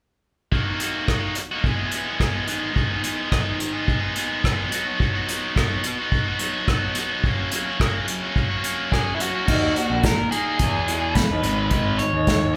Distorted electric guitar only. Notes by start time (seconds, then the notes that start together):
0.52 D#3 A#3 D#4 F#4
0.65 A#3 D#4 F#4
0.80 D#3 A#3 D#4 F#4
1.08 D#3 A#3 D#4 F#4
1.38 muted distorted electric guitar stroke
1.52 A#3 D#4 F#4
1.64 E2 B2 E3 G#3 B3 G#4
1.77 E3 G#3 B3 G#4
1.92 E3 G#3 B3 G#4
2.19 E2 B2 E3 G#3 B3 G#4
2.33 E3 G#3 B3 G#4
2.47 G#2 D#3 G#3 B3 D#4 G#4
2.60 G#3 B3 D#4 G#4
2.73 G#2 D#3 G#3 B3 D#4 G#4
2.88 G#3 B3 D#4 G#4
3.02 G#3 B3 D#4 G#4
3.29 G#2 D#3 G#3 B3 D#4 G#4
3.59 muted distorted electric guitar stroke
3.72 G#3 B3 D#4 G#4
4.00 G#3 B3 D#4 G#4
4.15 G#3 B3 D#4 G#4
4.43 G#2 D#3 G#3 B3 D#4 G#4
4.57 G#3 B3 D#4 G#4
4.69 B2 F#3 B3 D#4 F#4
4.84 B3 D#4 F#4
4.99 B2 F#3 B3 D#4 F#4
5.13 B3 D#4 F#4
5.27 F#3 B3 D#4 F#4
5.56 B2 F#3 B3 D#4 F#4
5.85 muted distorted electric guitar stroke
5.98 B3 D#4 F#4
6.26 B3 D#4 F#4
6.39 F#3 B3 D#4 F#4
6.68 B2 F#3 B3 D#4 F#4
6.82 B3 D#4 F#4
6.96 F#3 B3 D#4 F#4
7.11 B3 D#4 F#4
7.24 F#2 C#3 F#3 A#3 C#4 F#4
7.38 F#3 A#3 C#4 F#4
7.53 F#3 A#3 C#4 F#4
7.80 F#2 C#3 F#3 A#3 C#4 F#4
8.09 muted distorted electric guitar stroke
8.22 F#3 A#3 C#4 F#4
8.49 F#3 A#3 C#4 F#4
8.63 F#3 A#3 C#4 F#4
8.91 F#2 C#3 F#3 A#3 C#4 F#4
9.04 F#3 A#3 C#4 F#4
9.19 F#3 A#3 C#4 F#4
9.32 F#3 A#3 C#4 F#4
9.46 D#3 A#3 D#4
9.76 D#3 A#3
10.04 D#3 A#3
10.31 D#3 A#3 D#4
10.59 E2 B2 E3
10.88 E2 B2 E3
11.16 E2 B2
11.44 G#2 D#3 G#3
11.71 G#2 D#3 G#3
12.00 G#2 D#3
12.28 G#2 D#3